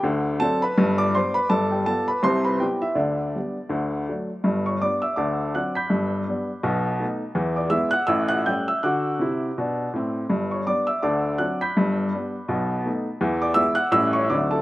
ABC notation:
X:1
M:4/4
L:1/8
Q:"Swing" 1/4=164
K:G
V:1 name="Upright piano"
z2 [Aa] [Bb]2 [dd'] [cc'] [Bb] | [Aa] [Gg] [Aa] [Bb] [cc'] [Bb] [Gg] [Ee] | [Dd]6- [Dd] z | z [^c^c'] [dd'] [ee'] [dad']2 [ff'] [bg'b']- |
[bg'b']8 | z [dd'] [ee'] [ff'] [ee'] [ff'] [gg'] [ee'] | [fd'f']6 z2 | z [^c^c'] [dd'] [ee'] [dad']2 [ff'] [bg'b']- |
[bg'b']8 | z [dd'] [ee'] [ff'] [ee'] [^c^c'] [dd'] [Aa] |]
V:2 name="Upright piano" clef=bass
[D,,D,]2 [F,CD]2 [G,,,G,,]2 [G,B,D]2 | [G,,,G,,]2 [G,B,=F]2 [C,,C,]2 [G,B,E]2 | [D,,D,]2 [G,B,D]2 [D,,D,]2 [F,A,D]2 | [G,,,G,,]2 [G,B,D]2 [D,,D,]2 [F,CD]2 |
[G,,,G,,]2 [G,B,D]2 [B,,,B,,]2 [A,B,^D]2 | [E,,E,]2 [^G,B,E]2 [A,,,A,,]2 [=G,A,^C]2 | [D,F]2 [C,E]2 [B,,D]2 [A,,C]2 | [G,,,G,,]2 [G,B,D]2 [D,,D,]2 [F,CD]2 |
[G,,,G,,]2 [G,B,D]2 [B,,,B,,]2 [A,B,^D]2 | [E,,E,]2 [^G,B,E]2 [A,,,A,,=G,^CE]2 [D,,D,F,=C_E]2 |]